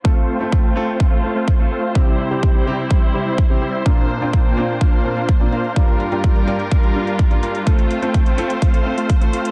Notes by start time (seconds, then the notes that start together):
0.04 A3 C4 F4 A4 C5 F5, kick
0.40 A3 C4 F4 A4 C5 G5
0.52 kick
0.64 A3 C4 F4 C5 G5
0.76 A3 C4 F4 A4
1.00 A3 C4 F4 C5 F5, kick
1.23 A3 C4 F4 A4
1.36 A3 C4 F4 C5 F5
1.48 kick
1.59 A3 C4 F4 A4
1.71 A3 C4 F4 C5 F5, closed hi-hat
1.83 closed hi-hat
1.95 C3 G3 C4 E4 G4 E5, kick
2.19 closed hi-hat
2.31 C3 G3 C4 E4 G4 C5 G5
2.43 kick
2.55 G3 C4 E4 C5 G5, closed hi-hat
2.66 C3 G3 C4 E4 G4
2.79 closed hi-hat
2.91 G3 C4 E4 C5 E5, kick
3.14 C3 G3 C4 E4 G4
3.26 G3 C4 E4 C5 E5, closed hi-hat
3.38 kick
3.50 C3 G3 C4 E4 G4, closed hi-hat
3.62 G3 C4 E4 C5 E5, closed hi-hat
3.74 closed hi-hat
3.85 A#2 A#3 C4 D4 F4 C5 F5, kick
3.98 closed hi-hat
4.10 closed hi-hat
4.21 A#2 A#3 C4 D4 F4 C5 G5, closed hi-hat
4.33 kick, closed hi-hat
4.45 A#3 D4 F4 C5 G5, closed hi-hat
4.57 A#2 A#3 C4 D4 F4, closed hi-hat
4.69 closed hi-hat
4.81 A#3 D4 F4 C5, kick, closed hi-hat
4.93 closed hi-hat
5.04 A#2 A#3 C4 D4 F4
5.17 A#3 D4 F4 C5 F5, closed hi-hat
5.29 kick, closed hi-hat
5.40 A#2 A#3 C4 D4 F4, closed hi-hat
5.52 A#3 D4 F4 C5 F5, closed hi-hat
5.64 closed hi-hat
5.76 G2 G3 A#3 D4 F4 A#4 F5, kick, closed hi-hat
5.88 closed hi-hat
6.00 closed hi-hat
6.11 G2 G3 A#3 D4 F4 A#4 G5, closed hi-hat
6.24 kick, closed hi-hat
6.36 G3 D4 F4 A#4 G5, closed hi-hat
6.47 G2 G3 A#3 D4 F4, closed hi-hat
6.60 closed hi-hat
6.71 G3 D4 F4 A#4 F5, kick, closed hi-hat
6.83 closed hi-hat
6.95 G2 G3 A#3 D4 F4
7.07 G3 D4 F4 A#4 F5, closed hi-hat
7.19 kick, closed hi-hat
7.30 G2 G3 A#3 D4 F4, closed hi-hat
7.43 G3 D4 F4 A#4 F5, closed hi-hat
7.55 closed hi-hat
7.66 A3 C4 F4 A4 C5 F5, kick, closed hi-hat
7.79 closed hi-hat
7.91 closed hi-hat
8.02 A3 C4 F4 A4 C5 G5, closed hi-hat
8.14 kick, closed hi-hat
8.26 A3 C4 F4 C5 G5, closed hi-hat
8.37 A3 C4 F4 A4, closed hi-hat
8.50 closed hi-hat
8.62 A3 F4, kick, closed hi-hat
8.74 closed hi-hat
8.85 A3 C4 F4 A4
8.98 A3 C4 F4 C5 F5, closed hi-hat
9.10 kick, closed hi-hat
9.21 A3 C4 F4 A4, closed hi-hat
9.33 A3 C4 F4 C5 F5, closed hi-hat
9.45 closed hi-hat